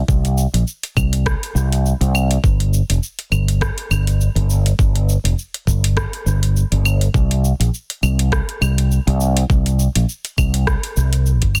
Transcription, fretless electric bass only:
0.08 C2
0.53 A#1
0.97 C2
1.55 C2
2.01 C2
2.44 G1
2.89 F1
3.31 G1
3.90 G1
4.35 G1
4.79 G1
5.24 F1
5.67 G1
6.26 G1
6.72 G1
7.14 C2
7.60 A#1
8.03 C2
8.61 C2
9.07 C2
9.50 C2
9.95 A#1
10.38 C2
10.97 C2
11.42 G1

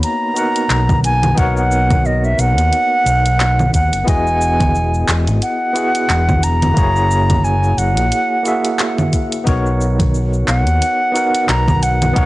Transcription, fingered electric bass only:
0.70 B1
1.38 B1
2.38 B1
2.57 D#2
3.06 B1
3.74 D#2
3.92 F#1
4.07 E1
5.08 E1
5.28 G#1
6.09 E1
6.77 F#1
7.77 F#1
7.97 A#1
9.47 B1
10.48 B1
10.66 D#2
11.49 B1
12.16 B1

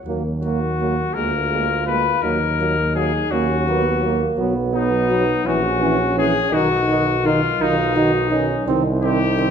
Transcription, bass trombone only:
0.05 D#2
1.15 D2
2.23 D#2
3.31 D#2
4.38 B1
5.45 A#1
6.53 B1
7.60 B1
8.67 C2

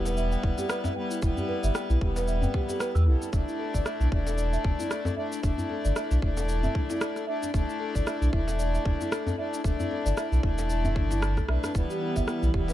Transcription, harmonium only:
Already playing: G3 B3 E4 B4
0.95 G3 B3 E4 B4
1.20 G3 B3 E4
1.25 B4
1.99 G3 B3 E4
2.03 B4
3.05 G3 B3 E4 A4
3.31 A3 D4 E4 D5
4.10 A3 D4 E4
4.14 D5
5.16 A3 D4 E4 D5
5.41 A3 D4 E4
5.45 D5
6.20 A3 D4 E4
6.24 D5
7.26 A3 D4 E4 D5
7.52 A3 D4 E4
7.56 D5
8.31 A3 D4 E4
8.35 D5
9.37 A3 D4 E4 D5
9.62 A3 D4 E4 D5
10.41 A3 D4 E4 D5
11.47 A3 D4 E4 B4
11.73 G3 B3 E4 B4
12.52 G3 B3 E4 B4

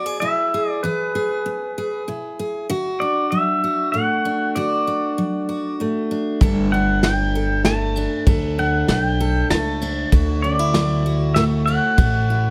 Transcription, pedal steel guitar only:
Already playing: D5
0.20 E5
0.69 D5
0.83 B4
3.00 D5
3.31 E5
3.92 F#5
4.55 D5
6.72 F#5
7.04 G5
7.65 A5
8.59 F#5
8.90 F#5
9.01 G5
9.51 A5
10.42 D5
11.34 E5
11.66 F#5

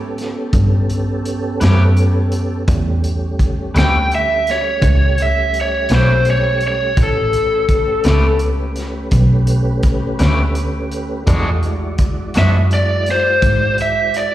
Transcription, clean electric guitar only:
1.60 A3 C#4 G4 B4
3.74 A3 C#4 G4 B4
5.91 A3 C#4 G4 B4
8.05 A3 C#4 G4 B4
10.19 A3 C#4 G4 B4
11.27 E3 G#3 D4 F#4
12.35 E3 G#3 D4 F#4

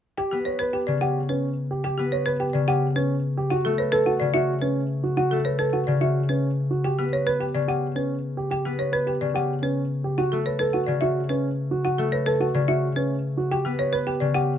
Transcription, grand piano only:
0.18 G4
0.46 C#5
0.60 B4
0.73 G4
1.01 G4
1.29 C#4
1.71 G4
1.84 G4
2.13 C#5
2.26 B4
2.40 G4
2.68 G4
2.96 C#4
3.37 G4
3.51 F#4
3.79 B4
3.93 A4
4.06 F#4
4.34 F#4
4.62 C#4
5.04 F#4
5.17 F#4
5.45 B4
5.59 A4
5.73 F#4
6.01 F#4
6.29 C#4
6.71 F#4
6.85 G4
7.13 C#5
7.26 B4
7.40 G4
7.68 G4
7.96 C#4
8.37 G4
8.51 G4
8.79 C#5
8.92 B4
9.07 G4
9.34 G4
9.62 C#4
10.04 G4
10.18 F#4
10.46 B4
10.60 A4
10.74 F#4
11.02 F#4
11.30 C#4
11.71 F#4
11.85 F#4
12.13 B4
12.27 A4
12.40 F#4
12.68 F#4
12.96 C#4
13.37 F#4
13.51 G4
13.79 C#5
13.93 B4
14.07 G4
14.35 G4

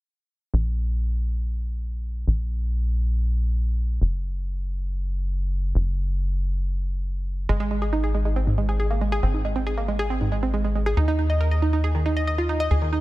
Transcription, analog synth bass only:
0.54 A#1
2.27 A#1
4.01 F#1
5.75 F#1
7.49 G#1
9.23 G#1
10.97 D#2
12.71 D#2

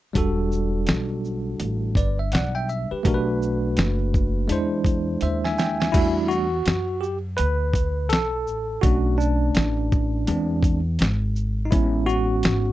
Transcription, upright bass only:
0.15 E1
0.88 B1
1.60 A1
1.95 G1
2.33 B1
2.91 muted upright bass stroke
3.05 B1
3.78 F#1
4.49 E2
5.22 D#2
5.94 E2
6.66 F#2
7.39 D2
8.11 B1
8.47 A1
8.83 B1
9.56 A1
10.28 E2
11.01 G#1
11.72 A1
12.45 G#1

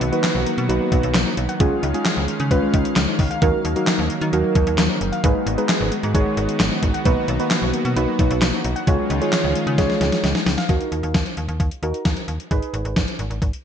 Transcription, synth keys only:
0.12 D#4 F#4 B4
0.69 D#4 F#4 B4
1.60 C#4 F4 G#4
1.94 C#4 F4 G#4
2.51 C#4 F4 B4
3.42 D#4 F#4 A#4
3.76 D#4 F#4 A#4
4.33 D#4 F#4 A#4
5.24 D#4 G#4 B4
5.58 D#4 G#4 B4
6.14 D#4 G#4 C#5
7.06 D#4 F#4 B4
7.40 D#4 F#4 B4
7.96 D#4 F#4 B4
8.87 F4 G#4 C#5
9.21 F4 G#4 C#5
9.78 F4 G#4 C#5
10.69 D#4 F#4 A#4
11.83 D#4 F#4 A#4
12.51 D#4 G#4 B4

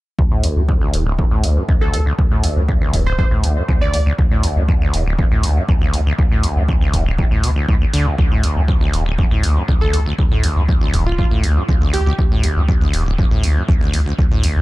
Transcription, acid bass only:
0.19 D2
0.31 A2
0.43 D2
0.56 G2
0.68 F2
0.81 D2
0.93 E2
1.06 D1
1.19 F2
1.31 A2
1.43 D2
1.56 G2
1.68 F2
1.81 D2
1.93 E2
2.06 D2
2.18 D2
2.31 A2
2.43 D2
2.56 G2
2.68 F2
2.81 D2
2.93 E2
3.06 D1
3.19 F2
3.31 A2
3.43 D2
3.56 G2
3.68 F2
3.81 D2
3.93 E2
4.06 D2
4.18 D2
4.31 A2
4.43 D2
4.56 G2
4.68 F2
4.81 D2
4.93 E2
5.06 D1
5.19 F2
5.32 A2
5.44 D2
5.56 G2
5.69 F2
5.82 D2
5.94 E2
6.06 D2
6.18 D2
6.32 A2
6.44 D2
6.57 G2
6.69 F2
6.81 D2
6.93 E2
7.06 D1
7.18 F2
7.31 A2
7.43 C3
7.56 D2
7.68 A2
7.81 D2
7.93 D3
8.06 C2
8.18 D2
8.31 A2
8.43 D2
8.56 G2
8.68 F2
8.81 D2
8.93 E2
9.06 D1
9.18 F2
9.31 A2
9.43 D2
9.56 G2
9.68 F2
9.81 D2
9.93 E2
10.06 D2
10.18 D2
10.31 A2
10.44 D2
10.56 G2
10.68 F2
10.81 D2
10.93 E2
11.06 D1
11.18 F2
11.31 A2
11.43 D2
11.56 G2
11.69 F2
11.81 D2
11.94 E2
12.06 D2
12.19 D2
12.31 A2
12.43 D2
12.56 G2
12.68 F2
12.81 D2
12.94 E2
13.06 D1
13.18 F2
13.31 A2
13.43 D2
13.56 G2
13.68 F2
13.81 D2
13.93 E2
14.06 D2
14.18 D2
14.31 A2
14.43 D2
14.56 G2

